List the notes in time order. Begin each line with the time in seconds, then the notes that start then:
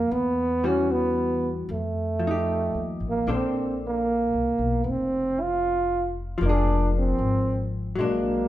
Already playing: F3 A#3 C4
0.11 E2 B3
0.64 E3 G3 C#4 F#4
0.91 B3
1.69 F2 A3
2.19 F3
2.27 D#4 G4
2.75 D#2
3.00 A1
3.09 A#3
3.27 A#1 A#3 D4 A4 C5
3.33 C4
3.86 A#3
4.33 C2
4.59 B1
4.84 F1 B3
4.90 C4
5.41 F4
6.38 F1 F3
6.43 A#3 D4
6.49 G#4
6.98 C4
7.18 G#1
7.95 A#1 F#3 G#3
8.00 A#3 D4